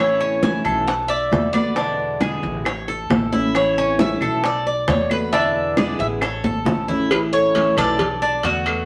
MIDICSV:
0, 0, Header, 1, 8, 480
1, 0, Start_track
1, 0, Key_signature, 3, "major"
1, 0, Tempo, 444774
1, 1910, Time_signature, 4, 2, 24, 8
1, 9553, End_track
2, 0, Start_track
2, 0, Title_t, "Cuban tres"
2, 0, Program_c, 0, 25
2, 0, Note_on_c, 0, 73, 82
2, 464, Note_off_c, 0, 73, 0
2, 469, Note_on_c, 0, 80, 86
2, 940, Note_off_c, 0, 80, 0
2, 945, Note_on_c, 0, 78, 96
2, 1010, Note_off_c, 0, 78, 0
2, 1169, Note_on_c, 0, 76, 96
2, 1646, Note_off_c, 0, 76, 0
2, 1650, Note_on_c, 0, 74, 83
2, 2106, Note_off_c, 0, 74, 0
2, 3838, Note_on_c, 0, 73, 96
2, 4282, Note_off_c, 0, 73, 0
2, 4321, Note_on_c, 0, 76, 98
2, 4764, Note_off_c, 0, 76, 0
2, 4807, Note_on_c, 0, 74, 92
2, 5281, Note_off_c, 0, 74, 0
2, 5286, Note_on_c, 0, 73, 73
2, 5514, Note_on_c, 0, 71, 87
2, 5526, Note_off_c, 0, 73, 0
2, 5579, Note_off_c, 0, 71, 0
2, 5748, Note_on_c, 0, 76, 100
2, 6231, Note_off_c, 0, 76, 0
2, 6235, Note_on_c, 0, 74, 80
2, 6470, Note_off_c, 0, 74, 0
2, 6474, Note_on_c, 0, 76, 87
2, 6539, Note_off_c, 0, 76, 0
2, 6719, Note_on_c, 0, 69, 75
2, 7392, Note_off_c, 0, 69, 0
2, 7680, Note_on_c, 0, 71, 88
2, 7744, Note_off_c, 0, 71, 0
2, 7908, Note_on_c, 0, 73, 100
2, 8396, Note_off_c, 0, 73, 0
2, 8400, Note_on_c, 0, 74, 110
2, 8841, Note_off_c, 0, 74, 0
2, 9116, Note_on_c, 0, 78, 89
2, 9553, Note_off_c, 0, 78, 0
2, 9553, End_track
3, 0, Start_track
3, 0, Title_t, "Marimba"
3, 0, Program_c, 1, 12
3, 7680, Note_on_c, 1, 64, 64
3, 7786, Note_off_c, 1, 64, 0
3, 7913, Note_on_c, 1, 69, 77
3, 8358, Note_off_c, 1, 69, 0
3, 8383, Note_on_c, 1, 71, 83
3, 8832, Note_off_c, 1, 71, 0
3, 9102, Note_on_c, 1, 74, 84
3, 9551, Note_off_c, 1, 74, 0
3, 9553, End_track
4, 0, Start_track
4, 0, Title_t, "Cuban tres"
4, 0, Program_c, 2, 25
4, 0, Note_on_c, 2, 64, 65
4, 207, Note_off_c, 2, 64, 0
4, 221, Note_on_c, 2, 61, 79
4, 690, Note_off_c, 2, 61, 0
4, 699, Note_on_c, 2, 69, 69
4, 1170, Note_off_c, 2, 69, 0
4, 1181, Note_on_c, 2, 74, 66
4, 1651, Note_off_c, 2, 74, 0
4, 1661, Note_on_c, 2, 71, 64
4, 1898, Note_off_c, 2, 71, 0
4, 1905, Note_on_c, 2, 62, 78
4, 2374, Note_off_c, 2, 62, 0
4, 2388, Note_on_c, 2, 68, 59
4, 2855, Note_off_c, 2, 68, 0
4, 2873, Note_on_c, 2, 73, 74
4, 3105, Note_off_c, 2, 73, 0
4, 3109, Note_on_c, 2, 69, 65
4, 3576, Note_off_c, 2, 69, 0
4, 3589, Note_on_c, 2, 64, 76
4, 4056, Note_off_c, 2, 64, 0
4, 4079, Note_on_c, 2, 61, 91
4, 4542, Note_off_c, 2, 61, 0
4, 4553, Note_on_c, 2, 69, 71
4, 5018, Note_off_c, 2, 69, 0
4, 5036, Note_on_c, 2, 74, 63
4, 5500, Note_off_c, 2, 74, 0
4, 5516, Note_on_c, 2, 71, 70
4, 5747, Note_off_c, 2, 71, 0
4, 5759, Note_on_c, 2, 62, 82
4, 6221, Note_off_c, 2, 62, 0
4, 6240, Note_on_c, 2, 68, 61
4, 6702, Note_off_c, 2, 68, 0
4, 6715, Note_on_c, 2, 73, 69
4, 6946, Note_off_c, 2, 73, 0
4, 6951, Note_on_c, 2, 69, 65
4, 7417, Note_off_c, 2, 69, 0
4, 7428, Note_on_c, 2, 64, 70
4, 7663, Note_off_c, 2, 64, 0
4, 7911, Note_on_c, 2, 73, 81
4, 8376, Note_off_c, 2, 73, 0
4, 8393, Note_on_c, 2, 69, 75
4, 8857, Note_off_c, 2, 69, 0
4, 8870, Note_on_c, 2, 62, 81
4, 9103, Note_off_c, 2, 62, 0
4, 9113, Note_on_c, 2, 66, 68
4, 9553, Note_off_c, 2, 66, 0
4, 9553, End_track
5, 0, Start_track
5, 0, Title_t, "Steel-string acoustic guitar"
5, 0, Program_c, 3, 25
5, 0, Note_on_c, 3, 52, 67
5, 0, Note_on_c, 3, 57, 75
5, 0, Note_on_c, 3, 61, 69
5, 0, Note_on_c, 3, 64, 76
5, 439, Note_off_c, 3, 52, 0
5, 449, Note_off_c, 3, 57, 0
5, 451, Note_off_c, 3, 61, 0
5, 452, Note_on_c, 3, 52, 69
5, 459, Note_off_c, 3, 64, 0
5, 462, Note_on_c, 3, 57, 70
5, 464, Note_on_c, 3, 61, 72
5, 469, Note_on_c, 3, 64, 82
5, 931, Note_off_c, 3, 52, 0
5, 931, Note_off_c, 3, 57, 0
5, 937, Note_off_c, 3, 61, 0
5, 940, Note_off_c, 3, 64, 0
5, 1421, Note_on_c, 3, 50, 50
5, 1428, Note_on_c, 3, 57, 50
5, 1435, Note_on_c, 3, 59, 58
5, 1439, Note_on_c, 3, 66, 53
5, 1646, Note_off_c, 3, 66, 0
5, 1652, Note_off_c, 3, 59, 0
5, 1656, Note_off_c, 3, 50, 0
5, 1659, Note_off_c, 3, 57, 0
5, 1659, Note_on_c, 3, 66, 60
5, 1665, Note_on_c, 3, 59, 61
5, 1672, Note_on_c, 3, 57, 56
5, 1680, Note_on_c, 3, 50, 53
5, 1887, Note_off_c, 3, 50, 0
5, 1893, Note_off_c, 3, 59, 0
5, 1895, Note_off_c, 3, 66, 0
5, 1895, Note_on_c, 3, 47, 79
5, 1899, Note_on_c, 3, 50, 72
5, 1901, Note_off_c, 3, 57, 0
5, 1905, Note_on_c, 3, 56, 76
5, 1906, Note_on_c, 3, 59, 70
5, 1911, Note_on_c, 3, 64, 75
5, 2363, Note_off_c, 3, 47, 0
5, 2366, Note_off_c, 3, 50, 0
5, 2373, Note_off_c, 3, 56, 0
5, 2374, Note_off_c, 3, 59, 0
5, 2376, Note_on_c, 3, 47, 75
5, 2379, Note_on_c, 3, 50, 70
5, 2381, Note_off_c, 3, 64, 0
5, 2386, Note_on_c, 3, 56, 69
5, 2387, Note_on_c, 3, 59, 71
5, 2393, Note_on_c, 3, 64, 68
5, 2854, Note_off_c, 3, 47, 0
5, 2855, Note_off_c, 3, 50, 0
5, 2856, Note_off_c, 3, 64, 0
5, 2859, Note_off_c, 3, 56, 0
5, 2860, Note_off_c, 3, 59, 0
5, 3336, Note_on_c, 3, 52, 49
5, 3344, Note_on_c, 3, 57, 56
5, 3352, Note_on_c, 3, 61, 52
5, 3354, Note_on_c, 3, 64, 53
5, 3572, Note_off_c, 3, 64, 0
5, 3574, Note_off_c, 3, 52, 0
5, 3578, Note_off_c, 3, 57, 0
5, 3580, Note_off_c, 3, 61, 0
5, 3585, Note_on_c, 3, 64, 63
5, 3593, Note_on_c, 3, 61, 63
5, 3602, Note_on_c, 3, 57, 48
5, 3819, Note_off_c, 3, 64, 0
5, 3822, Note_off_c, 3, 57, 0
5, 3823, Note_off_c, 3, 61, 0
5, 3831, Note_on_c, 3, 52, 72
5, 3835, Note_on_c, 3, 57, 72
5, 3841, Note_on_c, 3, 61, 76
5, 3844, Note_on_c, 3, 64, 85
5, 4300, Note_off_c, 3, 52, 0
5, 4301, Note_off_c, 3, 57, 0
5, 4307, Note_off_c, 3, 61, 0
5, 4309, Note_off_c, 3, 64, 0
5, 4312, Note_on_c, 3, 52, 70
5, 4314, Note_on_c, 3, 57, 78
5, 4322, Note_on_c, 3, 61, 76
5, 4330, Note_on_c, 3, 64, 82
5, 4783, Note_off_c, 3, 52, 0
5, 4784, Note_off_c, 3, 57, 0
5, 4788, Note_off_c, 3, 61, 0
5, 4792, Note_off_c, 3, 64, 0
5, 5269, Note_on_c, 3, 50, 52
5, 5276, Note_on_c, 3, 57, 52
5, 5279, Note_on_c, 3, 59, 48
5, 5286, Note_on_c, 3, 66, 61
5, 5494, Note_off_c, 3, 66, 0
5, 5501, Note_off_c, 3, 50, 0
5, 5501, Note_off_c, 3, 59, 0
5, 5505, Note_off_c, 3, 57, 0
5, 5507, Note_on_c, 3, 66, 61
5, 5514, Note_on_c, 3, 59, 60
5, 5518, Note_on_c, 3, 57, 53
5, 5528, Note_on_c, 3, 50, 58
5, 5740, Note_off_c, 3, 66, 0
5, 5741, Note_off_c, 3, 50, 0
5, 5744, Note_off_c, 3, 59, 0
5, 5746, Note_off_c, 3, 57, 0
5, 5749, Note_on_c, 3, 47, 71
5, 5754, Note_on_c, 3, 50, 74
5, 5761, Note_on_c, 3, 56, 74
5, 5763, Note_on_c, 3, 59, 72
5, 5766, Note_on_c, 3, 64, 75
5, 6215, Note_off_c, 3, 47, 0
5, 6224, Note_off_c, 3, 50, 0
5, 6225, Note_off_c, 3, 56, 0
5, 6228, Note_off_c, 3, 59, 0
5, 6228, Note_on_c, 3, 47, 73
5, 6230, Note_off_c, 3, 64, 0
5, 6236, Note_on_c, 3, 50, 66
5, 6238, Note_on_c, 3, 56, 76
5, 6241, Note_on_c, 3, 59, 74
5, 6248, Note_on_c, 3, 64, 84
5, 6701, Note_off_c, 3, 47, 0
5, 6705, Note_off_c, 3, 50, 0
5, 6706, Note_off_c, 3, 56, 0
5, 6707, Note_off_c, 3, 59, 0
5, 6707, Note_off_c, 3, 64, 0
5, 7189, Note_on_c, 3, 52, 46
5, 7198, Note_on_c, 3, 57, 48
5, 7201, Note_on_c, 3, 61, 59
5, 7207, Note_on_c, 3, 64, 60
5, 7410, Note_off_c, 3, 64, 0
5, 7421, Note_off_c, 3, 52, 0
5, 7421, Note_off_c, 3, 61, 0
5, 7423, Note_on_c, 3, 64, 65
5, 7425, Note_off_c, 3, 57, 0
5, 7434, Note_on_c, 3, 61, 64
5, 7442, Note_on_c, 3, 57, 53
5, 7658, Note_off_c, 3, 64, 0
5, 7663, Note_off_c, 3, 61, 0
5, 7667, Note_off_c, 3, 57, 0
5, 7670, Note_on_c, 3, 52, 71
5, 7678, Note_on_c, 3, 57, 72
5, 7681, Note_on_c, 3, 61, 68
5, 7689, Note_on_c, 3, 64, 77
5, 8132, Note_off_c, 3, 52, 0
5, 8135, Note_off_c, 3, 57, 0
5, 8143, Note_off_c, 3, 61, 0
5, 8145, Note_on_c, 3, 52, 78
5, 8148, Note_on_c, 3, 57, 76
5, 8150, Note_off_c, 3, 64, 0
5, 8156, Note_on_c, 3, 61, 77
5, 8161, Note_on_c, 3, 64, 87
5, 8614, Note_off_c, 3, 57, 0
5, 8617, Note_off_c, 3, 52, 0
5, 8623, Note_off_c, 3, 61, 0
5, 8626, Note_off_c, 3, 64, 0
5, 9107, Note_on_c, 3, 50, 55
5, 9112, Note_on_c, 3, 57, 55
5, 9121, Note_on_c, 3, 59, 55
5, 9124, Note_on_c, 3, 66, 55
5, 9328, Note_off_c, 3, 66, 0
5, 9335, Note_off_c, 3, 59, 0
5, 9338, Note_off_c, 3, 50, 0
5, 9341, Note_off_c, 3, 57, 0
5, 9341, Note_on_c, 3, 66, 68
5, 9348, Note_on_c, 3, 59, 58
5, 9357, Note_on_c, 3, 57, 60
5, 9359, Note_on_c, 3, 50, 54
5, 9553, Note_off_c, 3, 50, 0
5, 9553, Note_off_c, 3, 57, 0
5, 9553, Note_off_c, 3, 59, 0
5, 9553, Note_off_c, 3, 66, 0
5, 9553, End_track
6, 0, Start_track
6, 0, Title_t, "Upright bass"
6, 0, Program_c, 4, 32
6, 0, Note_on_c, 4, 33, 92
6, 637, Note_off_c, 4, 33, 0
6, 696, Note_on_c, 4, 35, 89
6, 1380, Note_off_c, 4, 35, 0
6, 1419, Note_on_c, 4, 40, 84
6, 2559, Note_off_c, 4, 40, 0
6, 2621, Note_on_c, 4, 33, 97
6, 3304, Note_off_c, 4, 33, 0
6, 3344, Note_on_c, 4, 33, 87
6, 4481, Note_off_c, 4, 33, 0
6, 4543, Note_on_c, 4, 35, 90
6, 5225, Note_off_c, 4, 35, 0
6, 5266, Note_on_c, 4, 40, 90
6, 6402, Note_off_c, 4, 40, 0
6, 6464, Note_on_c, 4, 33, 98
6, 6914, Note_off_c, 4, 33, 0
6, 6949, Note_on_c, 4, 32, 74
6, 7173, Note_off_c, 4, 32, 0
6, 7178, Note_on_c, 4, 33, 89
6, 8316, Note_off_c, 4, 33, 0
6, 8382, Note_on_c, 4, 35, 90
6, 9062, Note_off_c, 4, 35, 0
6, 9106, Note_on_c, 4, 40, 84
6, 9553, Note_off_c, 4, 40, 0
6, 9553, End_track
7, 0, Start_track
7, 0, Title_t, "Muted steel-string acoustic guitar strokes"
7, 941, Note_on_c, 9, 29, 50
7, 1049, Note_off_c, 9, 29, 0
7, 2863, Note_on_c, 9, 29, 55
7, 2971, Note_off_c, 9, 29, 0
7, 4797, Note_on_c, 9, 29, 64
7, 4905, Note_off_c, 9, 29, 0
7, 6712, Note_on_c, 9, 29, 63
7, 6820, Note_off_c, 9, 29, 0
7, 8622, Note_on_c, 9, 29, 62
7, 8730, Note_off_c, 9, 29, 0
7, 9553, End_track
8, 0, Start_track
8, 0, Title_t, "Drums"
8, 227, Note_on_c, 9, 63, 36
8, 335, Note_off_c, 9, 63, 0
8, 460, Note_on_c, 9, 60, 58
8, 465, Note_on_c, 9, 63, 92
8, 568, Note_off_c, 9, 60, 0
8, 573, Note_off_c, 9, 63, 0
8, 699, Note_on_c, 9, 75, 60
8, 708, Note_on_c, 9, 63, 35
8, 807, Note_off_c, 9, 75, 0
8, 816, Note_off_c, 9, 63, 0
8, 950, Note_on_c, 9, 63, 33
8, 952, Note_on_c, 9, 60, 63
8, 1058, Note_off_c, 9, 63, 0
8, 1060, Note_off_c, 9, 60, 0
8, 1194, Note_on_c, 9, 63, 31
8, 1302, Note_off_c, 9, 63, 0
8, 1432, Note_on_c, 9, 60, 60
8, 1432, Note_on_c, 9, 61, 75
8, 1432, Note_on_c, 9, 63, 81
8, 1540, Note_off_c, 9, 60, 0
8, 1540, Note_off_c, 9, 61, 0
8, 1540, Note_off_c, 9, 63, 0
8, 1663, Note_on_c, 9, 75, 66
8, 1672, Note_on_c, 9, 63, 81
8, 1771, Note_off_c, 9, 75, 0
8, 1780, Note_off_c, 9, 63, 0
8, 1900, Note_on_c, 9, 60, 62
8, 1912, Note_on_c, 9, 63, 33
8, 2008, Note_off_c, 9, 60, 0
8, 2020, Note_off_c, 9, 63, 0
8, 2155, Note_on_c, 9, 63, 33
8, 2262, Note_off_c, 9, 63, 0
8, 2381, Note_on_c, 9, 60, 59
8, 2386, Note_on_c, 9, 63, 58
8, 2386, Note_on_c, 9, 75, 63
8, 2489, Note_off_c, 9, 60, 0
8, 2494, Note_off_c, 9, 63, 0
8, 2494, Note_off_c, 9, 75, 0
8, 2629, Note_on_c, 9, 60, 36
8, 2635, Note_on_c, 9, 63, 34
8, 2737, Note_off_c, 9, 60, 0
8, 2743, Note_off_c, 9, 63, 0
8, 2863, Note_on_c, 9, 75, 74
8, 2872, Note_on_c, 9, 60, 58
8, 2872, Note_on_c, 9, 63, 36
8, 2971, Note_off_c, 9, 75, 0
8, 2980, Note_off_c, 9, 60, 0
8, 2980, Note_off_c, 9, 63, 0
8, 3110, Note_on_c, 9, 60, 34
8, 3110, Note_on_c, 9, 63, 31
8, 3218, Note_off_c, 9, 60, 0
8, 3218, Note_off_c, 9, 63, 0
8, 3351, Note_on_c, 9, 60, 63
8, 3351, Note_on_c, 9, 61, 77
8, 3353, Note_on_c, 9, 63, 78
8, 3459, Note_off_c, 9, 60, 0
8, 3459, Note_off_c, 9, 61, 0
8, 3461, Note_off_c, 9, 63, 0
8, 3592, Note_on_c, 9, 63, 78
8, 3595, Note_on_c, 9, 60, 31
8, 3699, Note_off_c, 9, 63, 0
8, 3703, Note_off_c, 9, 60, 0
8, 3828, Note_on_c, 9, 75, 73
8, 3830, Note_on_c, 9, 63, 36
8, 3832, Note_on_c, 9, 60, 61
8, 3936, Note_off_c, 9, 75, 0
8, 3937, Note_off_c, 9, 63, 0
8, 3940, Note_off_c, 9, 60, 0
8, 4070, Note_on_c, 9, 63, 34
8, 4178, Note_off_c, 9, 63, 0
8, 4307, Note_on_c, 9, 60, 63
8, 4309, Note_on_c, 9, 63, 93
8, 4415, Note_off_c, 9, 60, 0
8, 4417, Note_off_c, 9, 63, 0
8, 4542, Note_on_c, 9, 75, 64
8, 4552, Note_on_c, 9, 63, 33
8, 4650, Note_off_c, 9, 75, 0
8, 4660, Note_off_c, 9, 63, 0
8, 4788, Note_on_c, 9, 60, 65
8, 4791, Note_on_c, 9, 63, 33
8, 4896, Note_off_c, 9, 60, 0
8, 4899, Note_off_c, 9, 63, 0
8, 5032, Note_on_c, 9, 63, 34
8, 5140, Note_off_c, 9, 63, 0
8, 5265, Note_on_c, 9, 60, 71
8, 5265, Note_on_c, 9, 61, 79
8, 5270, Note_on_c, 9, 63, 89
8, 5372, Note_off_c, 9, 60, 0
8, 5372, Note_off_c, 9, 61, 0
8, 5378, Note_off_c, 9, 63, 0
8, 5503, Note_on_c, 9, 75, 60
8, 5513, Note_on_c, 9, 63, 74
8, 5611, Note_off_c, 9, 75, 0
8, 5620, Note_off_c, 9, 63, 0
8, 5751, Note_on_c, 9, 60, 67
8, 5758, Note_on_c, 9, 63, 35
8, 5859, Note_off_c, 9, 60, 0
8, 5866, Note_off_c, 9, 63, 0
8, 5998, Note_on_c, 9, 63, 36
8, 6106, Note_off_c, 9, 63, 0
8, 6228, Note_on_c, 9, 60, 69
8, 6228, Note_on_c, 9, 75, 59
8, 6234, Note_on_c, 9, 63, 62
8, 6335, Note_off_c, 9, 60, 0
8, 6336, Note_off_c, 9, 75, 0
8, 6342, Note_off_c, 9, 63, 0
8, 6467, Note_on_c, 9, 60, 35
8, 6468, Note_on_c, 9, 63, 35
8, 6575, Note_off_c, 9, 60, 0
8, 6576, Note_off_c, 9, 63, 0
8, 6705, Note_on_c, 9, 75, 71
8, 6710, Note_on_c, 9, 60, 61
8, 6712, Note_on_c, 9, 63, 37
8, 6813, Note_off_c, 9, 75, 0
8, 6818, Note_off_c, 9, 60, 0
8, 6820, Note_off_c, 9, 63, 0
8, 6950, Note_on_c, 9, 60, 35
8, 6950, Note_on_c, 9, 63, 87
8, 7057, Note_off_c, 9, 60, 0
8, 7058, Note_off_c, 9, 63, 0
8, 7190, Note_on_c, 9, 60, 66
8, 7190, Note_on_c, 9, 61, 77
8, 7193, Note_on_c, 9, 64, 66
8, 7298, Note_off_c, 9, 60, 0
8, 7298, Note_off_c, 9, 61, 0
8, 7301, Note_off_c, 9, 64, 0
8, 7432, Note_on_c, 9, 60, 34
8, 7438, Note_on_c, 9, 64, 79
8, 7540, Note_off_c, 9, 60, 0
8, 7546, Note_off_c, 9, 64, 0
8, 7671, Note_on_c, 9, 56, 104
8, 7674, Note_on_c, 9, 75, 77
8, 7677, Note_on_c, 9, 63, 35
8, 7779, Note_off_c, 9, 56, 0
8, 7781, Note_off_c, 9, 75, 0
8, 7785, Note_off_c, 9, 63, 0
8, 7919, Note_on_c, 9, 63, 36
8, 8027, Note_off_c, 9, 63, 0
8, 8148, Note_on_c, 9, 56, 77
8, 8156, Note_on_c, 9, 63, 65
8, 8256, Note_off_c, 9, 56, 0
8, 8264, Note_off_c, 9, 63, 0
8, 8391, Note_on_c, 9, 75, 60
8, 8392, Note_on_c, 9, 56, 78
8, 8392, Note_on_c, 9, 63, 39
8, 8392, Note_on_c, 9, 64, 88
8, 8499, Note_off_c, 9, 75, 0
8, 8500, Note_off_c, 9, 56, 0
8, 8500, Note_off_c, 9, 63, 0
8, 8500, Note_off_c, 9, 64, 0
8, 8624, Note_on_c, 9, 56, 98
8, 8632, Note_on_c, 9, 63, 35
8, 8632, Note_on_c, 9, 64, 78
8, 8732, Note_off_c, 9, 56, 0
8, 8740, Note_off_c, 9, 63, 0
8, 8740, Note_off_c, 9, 64, 0
8, 8870, Note_on_c, 9, 63, 36
8, 8978, Note_off_c, 9, 63, 0
8, 9102, Note_on_c, 9, 56, 71
8, 9104, Note_on_c, 9, 63, 34
8, 9210, Note_off_c, 9, 56, 0
8, 9212, Note_off_c, 9, 63, 0
8, 9345, Note_on_c, 9, 56, 66
8, 9351, Note_on_c, 9, 75, 75
8, 9453, Note_off_c, 9, 56, 0
8, 9459, Note_off_c, 9, 75, 0
8, 9553, End_track
0, 0, End_of_file